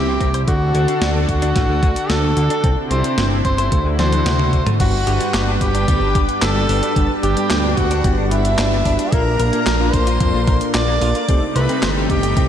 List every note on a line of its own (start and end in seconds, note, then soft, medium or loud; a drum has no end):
0.00 0.18 C2 medium
0.00 0.45 C3 medium
0.00 0.45 C4 medium
0.00 0.44 D4 medium
0.00 0.45 E4 medium
0.00 0.37 G4 loud
0.07 0.11 C4 medium
0.21 0.45 C2 loud
0.21 0.27 C4 medium
0.21 kick medium
0.21 closed hi-hat medium
0.34 0.41 C5 loud
0.34 closed hi-hat medium
0.47 0.72 D2 loud
0.47 2.62 D3 medium
0.47 0.54 D3 medium
0.47 4.76 D4 medium
0.47 2.62 F#4 medium
0.47 1.18 F#4 loud
0.47 2.62 A4 medium
0.47 kick loud
0.47 closed hi-hat medium
0.74 0.87 D2 medium
0.74 0.81 D3 medium
0.74 closed hi-hat medium
0.88 0.92 D4 medium
0.88 closed hi-hat medium
1.01 1.26 D2 loud
1.01 1.12 D4 medium
1.01 snare loud
1.01 closed hi-hat medium
1.15 1.19 D3 loud
1.29 1.53 D2 medium
1.29 2.11 F#4 loud
1.29 kick medium
1.29 closed hi-hat medium
1.42 1.49 D4 loud
1.42 closed hi-hat medium
1.56 1.68 A1 medium
1.56 1.63 A3 medium
1.56 kick loud
1.56 snare medium
1.56 closed hi-hat medium
1.69 1.82 D2 medium
1.69 1.73 D3 medium
1.83 1.95 D2 medium
1.83 1.90 D3 medium
1.83 kick loud
1.83 closed hi-hat medium
1.96 closed hi-hat medium
2.10 2.34 D2 medium
2.10 2.20 A3 medium
2.10 2.80 A4 loud
2.10 snare loud
2.10 closed hi-hat medium
2.23 2.27 D3 medium
2.37 2.49 D2 loud
2.37 2.44 D3 medium
2.37 closed hi-hat medium
2.50 2.57 D4 loud
2.50 closed hi-hat medium
2.64 2.76 C2 medium
2.64 3.71 C3 medium
2.64 2.71 C4 medium
2.64 3.71 C4 medium
2.64 4.78 E4 medium
2.64 kick loud
2.64 closed hi-hat medium
2.91 3.03 C2 loud
2.91 2.98 C4 medium
2.91 3.31 C5 medium
2.91 closed hi-hat medium
3.04 3.08 C5 medium
3.04 closed hi-hat medium
3.18 3.43 G1 medium
3.18 3.28 C5 medium
3.18 snare loud
3.18 closed hi-hat medium
3.31 3.35 C4 loud
3.45 3.70 G1 medium
3.45 3.85 C5 medium
3.45 kick medium
3.45 closed hi-hat medium
3.58 3.65 C5 loud
3.58 closed hi-hat medium
3.72 3.84 D2 loud
3.72 4.79 D3 medium
3.72 3.79 A3 medium
3.72 4.79 F#4 medium
3.72 kick loud
3.72 closed hi-hat medium
3.85 3.98 D2 loud
3.85 3.90 D3 medium
3.99 4.24 D2 medium
3.99 4.09 D4 medium
3.99 4.69 C5 loud
3.99 snare medium
3.99 closed hi-hat medium
3.99 high tom medium
4.12 closed hi-hat medium
4.12 high tom medium
4.26 4.51 D2 medium
4.26 4.33 D3 loud
4.26 snare loud
4.26 closed hi-hat loud
4.26 mid tom medium
4.39 4.44 D3 medium
4.39 mid tom medium
4.53 4.65 D2 medium
4.53 4.60 D3 medium
4.53 kick medium
4.53 closed hi-hat medium
4.67 4.77 A3 loud
4.67 closed hi-hat medium
4.67 mid tom medium
4.80 5.05 G1 loud
4.80 4.95 G2 loud
4.80 4.90 G3 medium
4.80 9.09 G3 medium
4.80 4.95 B3 medium
4.80 4.95 D4 medium
4.80 11.25 D4 medium
4.80 4.95 F#4 medium
4.80 5.50 F#4 loud
4.80 4.95 G4 medium
4.80 4.95 B4 loud
4.80 9.08 B4 loud
4.80 5.50 F#5 loud
4.80 kick loud
4.80 closed hi-hat medium
4.80 crash loud
5.07 5.19 G1 medium
5.07 5.11 G4 medium
5.07 closed hi-hat medium
5.21 5.44 G2 medium
5.21 5.27 G3 medium
5.21 5.44 B3 medium
5.21 5.44 D4 medium
5.21 5.44 F#4 medium
5.21 5.44 G4 medium
5.21 5.44 B4 loud
5.21 closed hi-hat medium
5.34 5.59 G1 loud
5.34 5.41 G4 loud
5.34 snare loud
5.34 clap loud
5.34 closed hi-hat loud
5.47 5.71 G2 medium
5.47 5.71 B3 medium
5.47 5.71 D4 medium
5.47 5.58 D4 medium
5.47 5.71 F#4 medium
5.47 5.71 G4 medium
5.47 5.71 B4 medium
5.61 5.86 G1 medium
5.61 6.31 G4 loud
5.61 6.31 G5 loud
5.61 kick medium
5.61 closed hi-hat medium
5.75 5.85 D4 medium
5.75 closed hi-hat medium
5.88 6.00 D2 medium
5.88 6.25 G2 medium
5.88 5.98 G3 medium
5.88 6.25 B3 medium
5.88 6.25 D4 medium
5.88 6.25 G4 medium
5.88 6.25 B4 loud
5.88 kick loud
5.88 closed hi-hat loud
6.01 6.14 G1 medium
6.01 6.08 D4 medium
6.15 6.28 G1 medium
6.15 6.19 G4 medium
6.15 kick loud
6.15 closed hi-hat medium
6.29 6.66 G2 medium
6.29 6.66 B3 medium
6.29 6.66 D4 medium
6.29 6.66 F#4 medium
6.29 6.66 G4 medium
6.29 6.66 B4 medium
6.29 closed hi-hat medium
6.42 6.67 G1 medium
6.42 6.49 D4 loud
6.42 7.12 A4 loud
6.42 7.12 A5 loud
6.42 snare loud
6.42 clap loud
6.42 closed hi-hat medium
6.56 6.60 G3 loud
6.69 6.82 G1 loud
6.69 6.93 G2 medium
6.69 6.93 B3 medium
6.69 6.93 D4 medium
6.69 6.76 D4 loud
6.69 6.93 F#4 medium
6.69 6.93 G4 medium
6.69 6.93 B4 medium
6.69 open hi-hat medium
6.83 6.93 D4 medium
6.83 closed hi-hat medium
6.96 7.09 G1 medium
6.96 7.11 G2 loud
6.96 7.06 G3 medium
6.96 7.11 B3 medium
6.96 7.11 D4 medium
6.96 7.11 F#4 medium
6.96 7.11 G4 medium
6.96 7.11 B4 loud
6.96 kick loud
6.96 closed hi-hat loud
7.23 7.36 G1 medium
7.23 7.27 G4 medium
7.23 7.79 G4 medium
7.23 7.77 G5 medium
7.23 closed hi-hat medium
7.37 7.61 G2 medium
7.37 7.43 G3 medium
7.37 7.61 B3 medium
7.37 7.61 D4 medium
7.37 7.61 F#4 medium
7.37 7.61 G4 medium
7.37 7.61 B4 loud
7.37 closed hi-hat medium
7.50 7.75 D2 medium
7.50 7.57 G4 loud
7.50 snare loud
7.50 clap loud
7.50 closed hi-hat loud
7.64 7.87 G2 medium
7.64 7.87 B3 medium
7.64 7.74 D4 medium
7.64 7.87 D4 medium
7.64 7.87 F#4 medium
7.64 7.87 G4 medium
7.64 7.87 B4 medium
7.77 8.02 D2 medium
7.77 8.17 F#4 medium
7.77 8.17 F#5 medium
7.77 kick medium
7.77 closed hi-hat medium
7.91 8.01 D4 medium
7.91 closed hi-hat medium
8.04 8.17 G1 loud
8.04 8.42 G2 loud
8.04 8.14 G3 medium
8.04 8.42 B3 medium
8.04 8.42 D4 medium
8.04 8.42 F#4 medium
8.04 8.42 G4 medium
8.04 8.42 B4 loud
8.04 kick loud
8.04 closed hi-hat loud
8.18 8.30 G1 medium
8.18 8.25 D4 medium
8.31 8.56 G1 loud
8.31 9.14 E4 loud
8.31 8.35 G4 medium
8.31 9.12 E5 loud
8.31 closed hi-hat medium
8.45 8.82 G2 medium
8.45 8.82 B3 medium
8.45 8.82 D4 medium
8.45 8.82 F#4 medium
8.45 8.82 G4 medium
8.45 8.82 B4 medium
8.45 closed hi-hat medium
8.58 8.83 G1 loud
8.58 8.65 D4 loud
8.58 snare loud
8.58 clap medium
8.58 closed hi-hat loud
8.72 8.76 G3 loud
8.85 8.98 G1 medium
8.85 9.09 B3 medium
8.85 9.09 D4 medium
8.85 8.92 D4 loud
8.85 9.09 F#4 medium
8.85 9.09 G4 medium
8.85 9.09 B4 medium
8.85 kick medium
8.85 open hi-hat medium
8.99 9.09 D4 medium
8.99 closed hi-hat medium
9.12 9.37 A#1 loud
9.12 9.27 A#2 loud
9.12 11.26 A#3 medium
9.12 9.27 A#3 medium
9.12 9.23 A#3 medium
9.12 9.27 D4 medium
9.12 9.27 F4 medium
9.12 9.27 A4 medium
9.12 9.27 A#4 loud
9.12 9.95 A#4 loud
9.12 9.94 A#5 loud
9.12 kick loud
9.12 closed hi-hat medium
9.39 9.52 A#1 medium
9.39 9.44 A#4 medium
9.39 closed hi-hat medium
9.53 9.77 A#2 medium
9.53 9.77 A#3 medium
9.53 9.60 A#3 medium
9.53 9.77 D4 medium
9.53 9.77 F4 medium
9.53 9.77 A4 medium
9.53 9.77 A#4 medium
9.53 closed hi-hat medium
9.66 9.91 A#1 loud
9.66 9.73 A#4 loud
9.66 snare loud
9.66 clap medium
9.66 closed hi-hat medium
9.80 10.03 A#2 medium
9.80 10.03 A#3 medium
9.80 10.03 D4 medium
9.80 10.03 F4 medium
9.80 9.90 F4 medium
9.80 10.03 A4 medium
9.80 10.03 A#4 medium
9.93 10.18 A#1 medium
9.93 10.64 C5 loud
9.93 10.64 C6 loud
9.93 kick medium
9.93 closed hi-hat medium
10.07 10.17 F4 medium
10.07 closed hi-hat medium
10.20 10.33 F2 medium
10.20 10.58 A#2 medium
10.20 10.58 A#3 medium
10.20 10.31 A#3 medium
10.20 10.58 D4 medium
10.20 10.58 F4 medium
10.20 10.58 A4 medium
10.20 10.58 A#4 loud
10.20 kick loud
10.20 closed hi-hat medium
10.34 10.46 A#1 medium
10.34 10.41 F4 medium
10.47 10.60 A#1 medium
10.47 10.52 A#4 medium
10.47 kick loud
10.47 closed hi-hat medium
10.61 10.98 A#2 medium
10.61 10.98 A#3 medium
10.61 10.98 D4 medium
10.61 10.98 F4 medium
10.61 10.98 A4 medium
10.61 10.98 A#4 medium
10.61 closed hi-hat medium
10.74 10.99 A#1 medium
10.74 10.81 F4 loud
10.74 11.45 D5 loud
10.74 11.45 D6 loud
10.74 snare loud
10.74 clap loud
10.74 closed hi-hat medium
10.88 10.92 A#3 loud
11.01 11.14 A#1 loud
11.01 11.25 A#3 medium
11.01 11.25 D4 medium
11.01 11.25 F4 medium
11.01 11.08 F4 loud
11.01 11.25 A4 medium
11.01 11.25 A#4 medium
11.01 open hi-hat medium
11.15 11.25 F4 medium
11.15 closed hi-hat medium
11.29 11.41 C2 medium
11.29 11.43 C3 loud
11.29 12.48 C3 medium
11.29 12.48 G3 medium
11.29 11.43 A3 medium
11.29 12.48 A3 medium
11.29 11.43 C4 medium
11.29 11.39 C4 medium
11.29 11.43 D#4 medium
11.29 12.48 D#4 medium
11.29 11.43 G4 medium
11.29 11.43 A4 loud
11.29 kick loud
11.29 closed hi-hat medium
11.56 11.68 C2 medium
11.56 11.96 B4 loud
11.56 11.60 C5 medium
11.56 11.96 B5 medium
11.56 closed hi-hat medium
11.69 11.93 C3 medium
11.69 11.93 A3 medium
11.69 11.76 C4 medium
11.69 11.93 C4 medium
11.69 11.93 D#4 medium
11.69 11.93 G4 medium
11.69 11.93 A4 loud
11.69 closed hi-hat medium
11.82 12.07 G1 medium
11.82 11.89 C5 loud
11.82 snare loud
11.82 clap medium
11.82 closed hi-hat loud
11.96 12.20 C3 medium
11.96 12.20 A3 medium
11.96 12.20 C4 medium
11.96 12.20 D#4 medium
11.96 12.06 G4 medium
11.96 12.20 G4 medium
11.96 12.20 A4 medium
12.10 12.34 G1 medium
12.10 12.48 G4 medium
12.10 12.48 G5 medium
12.10 kick medium
12.10 closed hi-hat medium
12.23 12.33 G4 medium
12.23 closed hi-hat medium
12.37 12.48 C2 loud
12.37 12.48 C3 loud
12.37 12.48 A3 medium
12.37 12.47 C4 medium
12.37 12.48 C4 medium
12.37 12.48 D#4 medium
12.37 12.48 G4 medium
12.37 12.48 A4 loud
12.37 kick loud
12.37 closed hi-hat medium